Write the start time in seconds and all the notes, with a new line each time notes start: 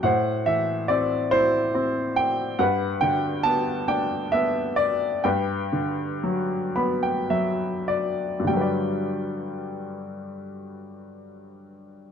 0.03 A2 C5 F#5
0.46 E3 E5
0.88 C4 D5
1.31 E4 C5
1.74 C4
2.16 G5
2.59 G2 B4 F#5
3.01 D3 G5
3.43 B3 A5
3.88 D4 G5
4.32 B3 E5
4.76 D5
5.24 G2 B4 G5
5.72 D3
6.23 F#3
6.76 B3 B5
7.03 G5
7.30 F#3 E5
7.88 D5
8.40 G2
8.44 D3 G5
8.48 G3
8.53 F#3
8.57 B4
8.61 D5